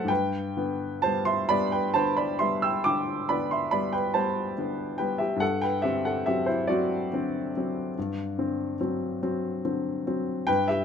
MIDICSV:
0, 0, Header, 1, 2, 480
1, 0, Start_track
1, 0, Tempo, 927357
1, 49, Time_signature, 12, 3, 24, 8
1, 1008, Tempo, 888889
1, 1968, Tempo, 843882
1, 6018, End_track
2, 0, Start_track
2, 0, Title_t, "Grand piano"
2, 0, Program_c, 0, 0
2, 0, Control_c, 0, 64, 127
2, 0, Note_on_c, 0, 50, 39
2, 0, Note_on_c, 0, 54, 36
2, 0, Note_on_c, 0, 57, 38
2, 0, Note_on_c, 0, 69, 53
2, 0, Note_on_c, 0, 72, 53
2, 0, Note_on_c, 0, 76, 66
2, 0, Note_on_c, 0, 78, 67
2, 0, Note_on_c, 0, 79, 56
2, 0, Note_on_c, 0, 81, 69
2, 23, Note_on_c, 0, 43, 56
2, 43, Note_off_c, 0, 79, 0
2, 43, Note_on_c, 0, 79, 84
2, 50, Note_on_c, 0, 71, 58
2, 59, Control_c, 0, 64, 0
2, 61, Note_off_c, 0, 50, 0
2, 63, Note_off_c, 0, 54, 0
2, 63, Note_off_c, 0, 69, 0
2, 64, Note_off_c, 0, 57, 0
2, 64, Note_off_c, 0, 72, 0
2, 64, Note_off_c, 0, 76, 0
2, 64, Note_off_c, 0, 78, 0
2, 64, Note_off_c, 0, 81, 0
2, 156, Control_c, 0, 64, 127
2, 294, Note_on_c, 0, 50, 41
2, 297, Note_on_c, 0, 59, 46
2, 510, Note_off_c, 0, 71, 0
2, 511, Note_off_c, 0, 50, 0
2, 513, Note_off_c, 0, 59, 0
2, 527, Note_off_c, 0, 79, 0
2, 528, Note_on_c, 0, 81, 70
2, 535, Note_on_c, 0, 72, 54
2, 540, Note_on_c, 0, 55, 37
2, 540, Note_on_c, 0, 59, 42
2, 645, Note_off_c, 0, 72, 0
2, 649, Note_off_c, 0, 81, 0
2, 649, Note_on_c, 0, 84, 78
2, 654, Note_on_c, 0, 76, 54
2, 755, Note_off_c, 0, 55, 0
2, 755, Note_off_c, 0, 59, 0
2, 764, Note_off_c, 0, 76, 0
2, 770, Note_off_c, 0, 84, 0
2, 770, Note_on_c, 0, 83, 84
2, 777, Note_on_c, 0, 74, 64
2, 779, Note_on_c, 0, 59, 45
2, 780, Note_on_c, 0, 55, 42
2, 885, Note_off_c, 0, 74, 0
2, 889, Note_off_c, 0, 83, 0
2, 890, Note_on_c, 0, 79, 67
2, 895, Note_on_c, 0, 71, 52
2, 990, Note_off_c, 0, 59, 0
2, 991, Note_off_c, 0, 55, 0
2, 1002, Note_off_c, 0, 71, 0
2, 1002, Note_on_c, 0, 81, 71
2, 1007, Note_off_c, 0, 79, 0
2, 1011, Note_on_c, 0, 72, 55
2, 1012, Note_on_c, 0, 59, 45
2, 1013, Note_on_c, 0, 50, 41
2, 1122, Note_off_c, 0, 72, 0
2, 1126, Note_off_c, 0, 81, 0
2, 1126, Note_on_c, 0, 83, 70
2, 1131, Note_on_c, 0, 74, 55
2, 1231, Note_off_c, 0, 50, 0
2, 1231, Note_off_c, 0, 59, 0
2, 1243, Note_off_c, 0, 74, 0
2, 1247, Note_on_c, 0, 84, 77
2, 1249, Note_off_c, 0, 83, 0
2, 1252, Note_on_c, 0, 76, 56
2, 1254, Note_on_c, 0, 55, 38
2, 1258, Note_on_c, 0, 59, 39
2, 1364, Note_off_c, 0, 76, 0
2, 1370, Note_off_c, 0, 84, 0
2, 1373, Note_on_c, 0, 88, 66
2, 1381, Note_on_c, 0, 79, 56
2, 1458, Note_off_c, 0, 43, 0
2, 1474, Note_off_c, 0, 55, 0
2, 1476, Note_off_c, 0, 59, 0
2, 1490, Note_off_c, 0, 79, 0
2, 1491, Note_on_c, 0, 86, 78
2, 1494, Note_off_c, 0, 88, 0
2, 1498, Note_on_c, 0, 79, 60
2, 1501, Note_on_c, 0, 50, 43
2, 1720, Note_off_c, 0, 79, 0
2, 1732, Note_off_c, 0, 50, 0
2, 1732, Note_on_c, 0, 83, 73
2, 1733, Note_off_c, 0, 86, 0
2, 1738, Note_on_c, 0, 74, 54
2, 1740, Note_on_c, 0, 50, 39
2, 1742, Note_on_c, 0, 59, 44
2, 1846, Note_off_c, 0, 74, 0
2, 1851, Note_off_c, 0, 83, 0
2, 1852, Note_on_c, 0, 84, 64
2, 1859, Note_on_c, 0, 76, 54
2, 1949, Note_off_c, 0, 50, 0
2, 1950, Note_off_c, 0, 59, 0
2, 1961, Note_on_c, 0, 83, 73
2, 1963, Note_off_c, 0, 76, 0
2, 1967, Note_on_c, 0, 74, 54
2, 1968, Note_off_c, 0, 84, 0
2, 1969, Note_on_c, 0, 55, 38
2, 1970, Note_on_c, 0, 59, 41
2, 2080, Note_off_c, 0, 74, 0
2, 2082, Note_on_c, 0, 79, 70
2, 2085, Note_off_c, 0, 83, 0
2, 2088, Note_on_c, 0, 71, 51
2, 2187, Note_off_c, 0, 55, 0
2, 2187, Note_off_c, 0, 59, 0
2, 2200, Note_off_c, 0, 71, 0
2, 2203, Note_on_c, 0, 81, 67
2, 2206, Note_off_c, 0, 79, 0
2, 2208, Note_on_c, 0, 72, 55
2, 2210, Note_on_c, 0, 55, 39
2, 2216, Note_on_c, 0, 59, 43
2, 2426, Note_off_c, 0, 55, 0
2, 2429, Note_off_c, 0, 59, 0
2, 2455, Note_on_c, 0, 50, 35
2, 2458, Note_on_c, 0, 59, 44
2, 2664, Note_off_c, 0, 72, 0
2, 2667, Note_off_c, 0, 50, 0
2, 2669, Note_off_c, 0, 59, 0
2, 2681, Note_on_c, 0, 79, 64
2, 2684, Note_off_c, 0, 81, 0
2, 2687, Note_on_c, 0, 71, 50
2, 2689, Note_on_c, 0, 55, 39
2, 2691, Note_on_c, 0, 59, 41
2, 2798, Note_off_c, 0, 71, 0
2, 2798, Note_on_c, 0, 76, 61
2, 2804, Note_off_c, 0, 79, 0
2, 2808, Note_on_c, 0, 67, 50
2, 2899, Note_on_c, 0, 43, 53
2, 2905, Note_off_c, 0, 55, 0
2, 2906, Note_off_c, 0, 59, 0
2, 2919, Note_off_c, 0, 67, 0
2, 2922, Note_on_c, 0, 78, 79
2, 2923, Note_off_c, 0, 76, 0
2, 2930, Note_on_c, 0, 69, 58
2, 2937, Control_c, 0, 64, 0
2, 3031, Control_c, 0, 64, 127
2, 3041, Note_off_c, 0, 69, 0
2, 3043, Note_on_c, 0, 79, 68
2, 3046, Note_off_c, 0, 78, 0
2, 3050, Note_on_c, 0, 71, 51
2, 3160, Note_on_c, 0, 76, 72
2, 3163, Note_off_c, 0, 71, 0
2, 3168, Note_off_c, 0, 79, 0
2, 3168, Note_on_c, 0, 67, 54
2, 3173, Note_on_c, 0, 50, 38
2, 3173, Note_on_c, 0, 60, 42
2, 3282, Note_off_c, 0, 67, 0
2, 3287, Note_off_c, 0, 76, 0
2, 3291, Note_on_c, 0, 78, 63
2, 3299, Note_on_c, 0, 69, 50
2, 3391, Note_off_c, 0, 50, 0
2, 3391, Note_off_c, 0, 60, 0
2, 3408, Note_off_c, 0, 69, 0
2, 3409, Note_on_c, 0, 76, 68
2, 3412, Note_off_c, 0, 78, 0
2, 3415, Note_on_c, 0, 67, 53
2, 3418, Note_on_c, 0, 54, 39
2, 3421, Note_on_c, 0, 60, 39
2, 3525, Note_on_c, 0, 72, 59
2, 3526, Note_off_c, 0, 67, 0
2, 3531, Note_off_c, 0, 76, 0
2, 3533, Note_on_c, 0, 64, 50
2, 3634, Note_off_c, 0, 54, 0
2, 3636, Note_off_c, 0, 60, 0
2, 3646, Note_off_c, 0, 64, 0
2, 3646, Note_on_c, 0, 74, 67
2, 3650, Note_off_c, 0, 72, 0
2, 3655, Note_on_c, 0, 66, 54
2, 3657, Note_on_c, 0, 54, 41
2, 3659, Note_on_c, 0, 60, 45
2, 3878, Note_off_c, 0, 54, 0
2, 3879, Note_off_c, 0, 60, 0
2, 3905, Note_on_c, 0, 50, 39
2, 3909, Note_on_c, 0, 60, 44
2, 4125, Note_off_c, 0, 50, 0
2, 4127, Note_off_c, 0, 60, 0
2, 4154, Note_on_c, 0, 54, 38
2, 4158, Note_on_c, 0, 60, 42
2, 4344, Note_off_c, 0, 43, 0
2, 4363, Note_off_c, 0, 54, 0
2, 4365, Note_off_c, 0, 60, 0
2, 4389, Note_on_c, 0, 43, 49
2, 4390, Control_c, 0, 64, 0
2, 4459, Control_c, 0, 64, 127
2, 4618, Note_on_c, 0, 50, 38
2, 4621, Note_on_c, 0, 60, 43
2, 4826, Note_off_c, 0, 66, 0
2, 4828, Note_off_c, 0, 50, 0
2, 4829, Note_off_c, 0, 60, 0
2, 4844, Note_off_c, 0, 74, 0
2, 4858, Note_on_c, 0, 54, 39
2, 4858, Note_on_c, 0, 60, 42
2, 5070, Note_off_c, 0, 54, 0
2, 5070, Note_off_c, 0, 60, 0
2, 5097, Note_on_c, 0, 54, 39
2, 5098, Note_on_c, 0, 60, 46
2, 5311, Note_off_c, 0, 54, 0
2, 5311, Note_off_c, 0, 60, 0
2, 5337, Note_on_c, 0, 60, 41
2, 5338, Note_on_c, 0, 50, 43
2, 5548, Note_off_c, 0, 60, 0
2, 5549, Note_off_c, 0, 50, 0
2, 5577, Note_on_c, 0, 54, 38
2, 5578, Note_on_c, 0, 60, 45
2, 5787, Note_off_c, 0, 43, 0
2, 5787, Note_off_c, 0, 54, 0
2, 5788, Note_off_c, 0, 60, 0
2, 5802, Note_on_c, 0, 79, 93
2, 5810, Note_on_c, 0, 71, 75
2, 5813, Note_on_c, 0, 43, 55
2, 5815, Control_c, 0, 64, 0
2, 5905, Control_c, 0, 64, 127
2, 5921, Note_off_c, 0, 71, 0
2, 5922, Note_on_c, 0, 76, 72
2, 5926, Note_off_c, 0, 79, 0
2, 5931, Note_on_c, 0, 67, 59
2, 6018, Note_off_c, 0, 43, 0
2, 6018, Note_off_c, 0, 67, 0
2, 6018, Note_off_c, 0, 76, 0
2, 6018, End_track
0, 0, End_of_file